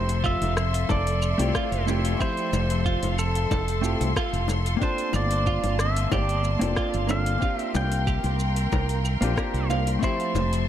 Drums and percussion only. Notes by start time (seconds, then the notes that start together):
0.09 open hi-hat, shaker
0.24 kick, claves, shaker
0.42 open hi-hat, high bongo
0.57 cross-stick, shaker
0.74 open hi-hat, shaker
0.89 kick, high bongo, shaker
1.07 open hi-hat, shaker
1.22 claves, shaker
1.39 open hi-hat, high bongo, shaker
1.55 kick, cross-stick, shaker
1.72 open hi-hat, shaker
1.88 high bongo, shaker
2.05 open hi-hat, shaker
2.20 kick, claves, shaker
2.37 open hi-hat, shaker
2.53 high bongo, shaker
2.70 open hi-hat, shaker
2.86 kick, shaker
3.03 open hi-hat, high bongo, shaker
3.18 claves, shaker
3.35 open hi-hat, shaker
3.51 kick, high bongo, shaker
3.68 open hi-hat, shaker
3.84 shaker
4.01 open hi-hat, high bongo, shaker
4.16 kick, cross-stick, claves, shaker
4.34 open hi-hat, shaker
4.48 high bongo, shaker
4.66 open hi-hat, shaker
4.82 kick, shaker
4.98 open hi-hat, shaker
5.13 high bongo, claves, shaker
5.31 open hi-hat, shaker
5.46 kick, shaker
5.63 open hi-hat, high bongo
5.79 cross-stick, shaker
5.96 open hi-hat, shaker
6.12 kick, high bongo, claves, shaker
6.29 open hi-hat, shaker
6.44 shaker
6.61 open hi-hat, high bongo, shaker
6.76 kick, cross-stick, shaker
6.94 open hi-hat, shaker
7.09 high bongo, claves, shaker
7.26 open hi-hat, shaker
7.42 kick, shaker
7.59 open hi-hat, shaker
7.75 high bongo, shaker
7.92 open hi-hat, shaker
8.07 kick, claves, shaker
8.24 open hi-hat, high bongo, shaker
8.40 shaker
8.56 open hi-hat, shaker
8.72 kick, high bongo, shaker
8.89 open hi-hat, shaker
9.05 claves, shaker
9.22 open hi-hat, high bongo, shaker
9.37 kick, cross-stick, shaker
9.54 open hi-hat, shaker
9.70 high bongo, shaker
9.87 open hi-hat, shaker
10.03 kick, shaker
10.20 open hi-hat, shaker
10.35 high bongo, shaker
10.53 open hi-hat, shaker